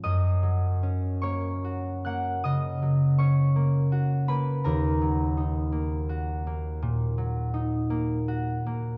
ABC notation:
X:1
M:12/8
L:1/8
Q:3/8=55
K:F#
V:1 name="Harp"
[dd']3 [cc']2 [ff'] [dd']2 [cc']3 [Bb] | [Aa]12 |]
V:2 name="Harp"
[F,,C] F, C A, F A, C, F, C A, F A, | D,, F, D A, F A, A,, F, D A, F A, |]